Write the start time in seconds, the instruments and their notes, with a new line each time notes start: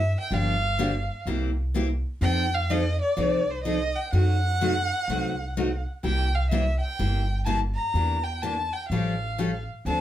Already playing: upright bass G2, violin E5
0.20 violin G5
0.31 upright bass G1, steel-string acoustic guitar D3 F3 A#3 D4 G4
0.36 violin F5
0.79 steel-string acoustic guitar D3 F3 A#3 D4 G4
1.26 upright bass C2, steel-string acoustic guitar C3 G3 A#3 E4 G4
1.74 steel-string acoustic guitar C3 G3 A#3 E4 G4
2.21 upright bass F2, steel-string acoustic guitar F3 C4 D#4 A4, violin G5
2.54 violin F5
2.70 steel-string acoustic guitar F3 C4 D#4 A4, violin D#5
3.01 violin D5
3.17 upright bass C2, steel-string acoustic guitar F3 C4 D#4 A4
3.50 violin C5
3.64 steel-string acoustic guitar F3 C4 D#4 A4, violin D#5
3.96 violin G5
4.13 upright bass F#2, steel-string acoustic guitar C3 F#3 A3 D#4 F#4, violin F#5
4.61 steel-string acoustic guitar C3 F#3 A3 D#4 F#4
5.08 upright bass C2, steel-string acoustic guitar C3 F#3 A3 D#4 F#4
5.57 steel-string acoustic guitar C3 F#3 A3 D#4 F#4
6.03 upright bass C2, steel-string acoustic guitar C3 G3 A#3 E4 G4, violin G5
6.35 violin F5
6.50 steel-string acoustic guitar C3 G3 A#3 E4 G4, violin E5
6.80 violin G5
6.99 upright bass G1, steel-string acoustic guitar C3 G3 A#3 E4 G4
7.45 steel-string acoustic guitar C3 G3 A#3 E4 G4, violin A5
7.75 violin A#5
7.94 upright bass E2, steel-string acoustic guitar E3 A#3 D4 G4
8.24 violin G5
8.42 steel-string acoustic guitar E3 A#3 D4 G4, violin A5
8.73 violin G5
8.89 upright bass A1, steel-string acoustic guitar F3 G3 C#4 G4 A4, violin F5
9.38 steel-string acoustic guitar F3 G3 C#4 G4 A4
9.85 upright bass D2, steel-string acoustic guitar D3 F3 C4 D4 A4, violin A5